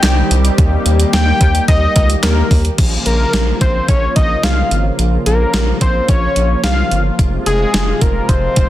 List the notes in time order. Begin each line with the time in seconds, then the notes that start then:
Already playing: D#3 G3 C4 G4 G5
0.03 C2, snare, clap, closed hi-hat
0.31 C2, closed hi-hat
0.45 closed hi-hat
0.58 D#2 A#3, kick, closed hi-hat
0.86 D#2, closed hi-hat
1.00 closed hi-hat
1.13 D#2 G5, snare, closed hi-hat
1.41 D#2, kick, closed hi-hat
1.55 closed hi-hat
1.68 D#2 D#5, kick, closed hi-hat
1.96 C#2 D#5, kick, closed hi-hat
2.10 closed hi-hat
2.23 D#2 A#4, snare, clap, closed hi-hat
2.51 D#2, kick, open hi-hat
2.65 closed hi-hat
2.78 A#1 C#3 F3 A#3 F4, kick, closed hi-hat, crash
3.06 A#1 A#4, closed hi-hat
3.33 A#1, snare, closed hi-hat
3.61 A#1 C5, kick, closed hi-hat
3.88 A#1 C#5, kick, closed hi-hat
4.16 A#1 D#5, kick, closed hi-hat
4.43 C2 F5, snare, closed hi-hat
4.71 G#1, closed hi-hat
4.99 A#1, closed hi-hat
5.26 A#1 A#4, closed hi-hat
5.54 A#1, snare, closed hi-hat
5.81 A#1 C5, kick, closed hi-hat
6.08 A#1 C#5, kick, closed hi-hat
6.36 A#1, closed hi-hat
6.64 C2 F5, snare, closed hi-hat
6.91 G1, closed hi-hat
7.19 F1 C3 G#3, kick, closed hi-hat
7.46 F1 G#4, closed hi-hat
7.74 F1, snare, closed hi-hat
8.01 F1 A#4, kick, closed hi-hat
8.28 F1 C5, kick, closed hi-hat
8.56 F1, kick, closed hi-hat